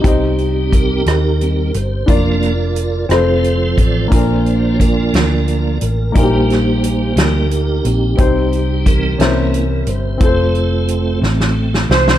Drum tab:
HH |x-x-x-x-x-x-|x-x-x-x-x-x-|x-x-x-x-x-x-|x-x-x-x-x-x-|
SD |------r-----|--r---r-----|------o-----|--o---o-----|
BD |o---o-------|o---------o-|o---o-------|o-----------|

HH |x-x-x-x-x-x-|x-x-x-------|
SD |------o-----|------oo-ooo|
BD |o---o-------|o-----------|